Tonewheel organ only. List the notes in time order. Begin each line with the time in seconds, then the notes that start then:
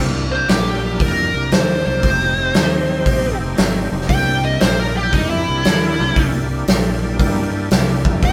Already playing: A#3 D4 E4 G4
0.31 A#3 D4 E4 G4
0.50 A#3 D4 E4 G4
0.84 A#3 D4 E4 G4
1.00 A#3 D4 E4 G4
1.34 A#3 D4 E4 G4
1.52 A#3 D4 E4 G4
1.86 A#3 D4 E4 G4
2.03 A3 C4 D#4 G4
2.37 A3 C4 D#4 G4
2.54 A3 C4 D#4 G4
2.88 A3 C4 D#4 G4
3.05 A3 C4 D#4 G4
3.39 A3 C4 D#4 G4
3.57 A3 C4 D#4 G4
3.91 A3 C4 D#4 G4
4.09 A#3 D4 E4 G4
4.43 A#3 D4 E4 G4
4.61 A#3 D4 E4 G4
4.94 A#3 D4 E4 G4
5.13 A#3 D4 E4 G4
5.48 A#3 D4 E4 G4
5.66 A#3 D4 E4 G4
5.99 A#3 D4 E4 G4
6.17 A#3 D4 E4 G4
6.50 A#3 D4 E4 G4
6.68 A#3 D4 E4 G4
7.02 A#3 D4 E4 G4
7.19 A#3 D4 E4 G4
7.52 A#3 D4 E4 G4
7.71 A#3 D4 E4 G4
8.06 A#3 D4 E4 G4
8.23 A3 C4 D#4 G4